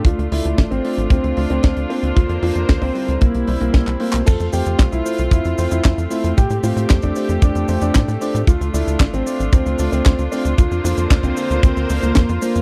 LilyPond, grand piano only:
\new Staff \with { instrumentName = "Grand piano" } { \time 4/4 \key f \major \tempo 4 = 114 f'16 r16 e'8 r16 c'8 r16 c'8 r16 c'8 r16 c'16 r16 | f'16 r16 f'8 r16 c'8 r16 bes8 r16 bes8 r16 bes16 r16 | a'16 r16 g'8 r16 e'8 r16 e'8 r16 e'8 r16 e'16 r16 | g'16 r16 f'8 r16 d'8 r16 d'8 r16 d'8 r16 d'16 r16 |
f'16 r16 e'8 r16 c'8 r16 c'8 r16 c'8 r16 c'16 r16 | f'16 r16 f'8 r16 c'8 r16 c'8 r16 bes8 r16 bes16 r16 | }